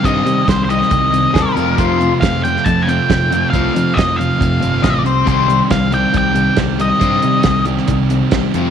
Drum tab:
HH |x-x-x-x-x-x-x-x-|x-x-x-x-x-x-x-x-|x-x-x-x-x-x-x-x-|x-x-x-x-x-x-x-x-|
SD |----o--o----o---|----o--o----o---|----o-------o---|----o-------o---|
BD |o---o---o---o---|o---o---o---o---|o---o---o---o---|o---o---o---o---|

HH |x-x-x-x-x-x-x-x-|
SD |----o--o----o---|
BD |o---o---o---o---|